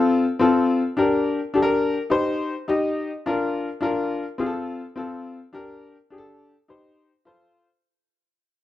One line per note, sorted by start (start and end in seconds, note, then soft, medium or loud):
0.00 0.24 C4 medium
0.00 0.24 F4 medium
0.00 0.24 A4 loud
0.39 0.81 C4 medium
0.39 0.81 F4 medium
0.39 0.82 A4 medium
0.97 1.38 D4 medium
0.97 1.38 G4 medium
0.97 1.39 A#4 medium
1.54 1.95 D4 medium
1.54 1.96 G4 medium
1.54 1.61 A4 medium
1.62 1.99 A#4 loud
2.10 2.52 D#4 medium
2.10 2.52 G4 medium
2.10 2.52 C5 loud
2.68 3.09 D#4 medium
2.68 3.09 G4 medium
2.68 3.10 D#5 medium
3.26 3.67 D4 medium
3.26 3.67 F4 medium
3.26 3.67 A#4 loud
3.81 4.23 D4 medium
3.81 4.23 F4 medium
3.81 4.24 A#4 loud
4.38 4.80 C4 medium
4.38 4.81 F4 medium
4.38 4.46 G#4 medium
4.46 4.84 A4 medium
4.96 5.37 C4 medium
4.96 5.38 F4 medium
4.96 5.38 A4 medium
5.53 5.94 D4 medium
5.53 5.95 G4 medium
5.53 5.95 A#4 medium
6.10 6.52 D4 medium
6.10 6.53 G4 medium
6.10 6.18 G#4 medium
6.18 6.56 A4 medium
6.68 7.09 D#4 medium
6.68 7.10 G4 medium
6.68 7.10 C5 medium
7.25 7.66 F4 medium
7.25 7.67 A4 medium
7.25 7.67 C5 medium